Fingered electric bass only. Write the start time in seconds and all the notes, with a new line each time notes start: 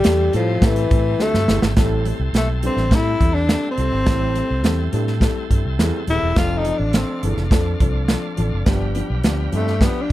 0.06 E2
0.34 A2
0.62 A2
0.91 A2
1.34 G2
1.48 G1
1.63 G#1
1.77 A1
2.19 C2
2.33 B1
2.76 A1
2.91 A2
3.21 E2
3.78 C2
3.93 G#1
4.07 A1
4.51 C2
4.65 E2
4.93 A2
5.50 G2
5.65 C2
5.79 E2
6.08 D#1
6.23 E1
6.37 F1
6.79 A1
7.23 G1
7.37 F1
7.51 F2
7.80 C2
8.38 A1
8.52 F#1
8.67 G1
9.10 B1
9.25 D2
9.53 G2